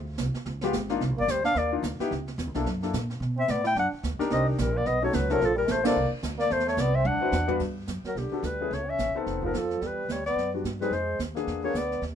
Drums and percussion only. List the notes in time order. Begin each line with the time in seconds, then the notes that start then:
0.18 snare, hi-hat pedal
0.34 snare
0.45 brush sweep, snare
0.61 snare
0.73 snare, hi-hat pedal
0.89 snare
1.01 brush sweep, snare
1.28 snare, hi-hat pedal
1.44 snare
1.55 brush sweep, snare
1.83 snare, hi-hat pedal
2.00 snare
2.12 brush sweep, snare
2.28 snare
2.38 snare, hi-hat pedal
2.54 snare
2.66 brush sweep, snare
2.83 snare
2.94 snare, hi-hat pedal
3.10 snare
3.22 brush sweep, snare
3.48 snare, hi-hat pedal
3.64 snare
3.76 brush sweep, snare
4.04 snare, hi-hat pedal
4.20 snare
4.30 brush sweep, snare
4.58 snare, hi-hat pedal
4.86 brush sweep, snare
5.13 snare, hi-hat pedal
5.30 snare
5.41 brush sweep, snare
5.68 snare, hi-hat pedal
5.85 snare, ride
5.96 brush sweep
6.23 snare, hi-hat pedal
6.40 snare
6.51 brush sweep, snare
6.60 snare
6.68 snare
6.78 snare, hi-hat pedal
7.05 high tom
7.32 snare, hi-hat pedal
7.48 floor tom
7.60 brush sweep, kick, snare, ride
7.87 snare, hi-hat pedal
8.05 snare
8.17 brush sweep, snare
8.43 snare, hi-hat pedal
8.72 brush sweep, snare
8.99 snare, hi-hat pedal
9.27 brush sweep, snare
9.43 kick
9.54 snare, hi-hat pedal
9.70 snare
9.81 brush sweep, snare
10.09 snare, hi-hat pedal
10.26 snare
10.38 brush sweep, snare
10.65 snare, hi-hat pedal
10.81 snare
10.92 brush sweep, snare
11.20 snare, hi-hat pedal
11.36 snare
11.47 brush sweep, snare
11.75 snare, hi-hat pedal
11.91 snare
12.02 brush sweep, snare